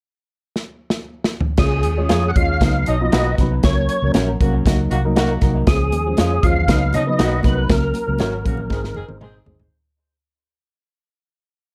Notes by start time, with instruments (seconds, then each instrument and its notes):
0.56 snare
0.90 snare
1.24 snare
1.40 floor tom
1.57 fingered electric bass C#2, upright piano G#3 C#4 F4 C#5, tonewheel organ G#4, kick, snare, crash
1.83 fingered electric bass D#2, closed hi-hat
1.97 upright piano G#3 C#4 F4 C#5
2.09 fingered electric bass F2, clean electric guitar F4 G#4 C#5, snare, closed hi-hat
2.28 tonewheel organ F#5
2.36 fingered electric bass D#2, saxophone section C#3 G#3 F4, upright piano G#3 C#4 F4 C#5, tonewheel organ F5, kick, closed hi-hat
2.61 fingered electric bass C#2, saxophone section B2 F#3 D#4, upright piano F#3 B3 D#4 B4, kick, snare, closed hi-hat
2.86 fingered electric bass B1, saxophone section B2 F#3 D#4, tonewheel organ D#5, closed hi-hat
3.01 upright piano F#3 B3 D#4 F4
3.12 fingered electric bass B1, saxophone section D#3 B3 F#4, clean electric guitar D#4 F#4 B4, snare, closed hi-hat
3.38 fingered electric bass C2, upright piano F#3 B3 D#4 B4, kick, snare, closed hi-hat
3.63 fingered electric bass C#2, upright piano F#3 A#3 C#4 A#4, tonewheel organ C#5, kick, snare, closed hi-hat
3.89 closed hi-hat
4.02 fingered electric bass C#2, upright piano F#3 A#3 C#4 A#4
4.14 fingered electric bass A#1, clean electric guitar C#4 F#4 A#4, snare, closed hi-hat
4.40 fingered electric bass C2, saxophone section C#3 A#3 F#4, upright piano F#3 A#3 C#4 A#4, kick, closed hi-hat
4.66 fingered electric bass C#2, saxophone section D#3 A#3 F#4, upright piano F#3 A#3 D#4 A#4, kick, snare, closed hi-hat
4.91 fingered electric bass C2, saxophone section D#3 A#3 F#4, closed hi-hat
5.05 upright piano F#3 A#3 D#4 A#4
5.16 saxophone section D#3 A#3 F#4, clean electric guitar D#4 F#4 A#4, snare, closed hi-hat
5.41 fingered electric bass C2, upright piano F#3 A#3 D#4 A#4, kick, snare, closed hi-hat
5.67 fingered electric bass C#2, upright piano F3 G#3 C#4 G#4, tonewheel organ G#4, kick, snare, closed hi-hat
5.92 fingered electric bass D#2, closed hi-hat, muted conga
6.06 upright piano F3 G#3 C#4 G#4
6.17 fingered electric bass F2, clean electric guitar G#3 C#4 F4, snare, closed hi-hat, high conga
6.43 fingered electric bass D#2, saxophone section C#3 G#3 F4, upright piano F3 G#3 C#4 F4, tonewheel organ F5, kick, closed hi-hat
6.56 low conga
6.68 fingered electric bass C#2, saxophone section B2 F#3 D#4, upright piano F#3 B3 D#4 B4, kick, snare, closed hi-hat, muted conga, low conga
6.93 saxophone section B2 F#3 D#4, fingered electric bass C#3, tonewheel organ D#5, closed hi-hat, muted conga
7.07 upright piano F#3 B3 D#4 B4
7.19 fingered electric bass B1, saxophone section D#3 B3 F#4, clean electric guitar D#4 F#4 B4, snare, closed hi-hat, high conga
7.43 fingered electric bass C2, upright piano F#3 B3 D#4 A#4, tonewheel organ B4, kick, snare, closed hi-hat, high conga
7.69 fingered electric bass C#2, upright piano F#3 A#3 C#4 A#4, tonewheel organ A#4, kick, snare, closed hi-hat
7.94 closed hi-hat, muted conga
8.06 fingered electric bass C#2, upright piano F#3 A#3 C#4 A#4
8.19 fingered electric bass G#1, clean electric guitar C#4 F#4 A#4, snare, closed hi-hat, high conga
8.44 fingered electric bass A#1, saxophone section C#3 A#3 F#4, upright piano F#3 A#3 C#4 A#4, kick, closed hi-hat
8.57 low conga
8.69 fingered electric bass G#1, saxophone section D#3 C4 G#4, upright piano G#3 C4 D#4 C5, kick, snare, muted conga, low conga
8.84 snare
8.94 fingered electric bass F#1, saxophone section D#3 C4 G#4, muted conga, low conga
9.08 fingered electric bass G#1, upright piano G#3 C4 D#4 C5, high tom
9.21 saxophone section D#3 C4 G#4, clean electric guitar D#4 G#4 C5, mid tom, high conga
9.46 fingered electric bass G1, upright piano G#3 C4 D#4 C5, floor tom, high conga
9.60 floor tom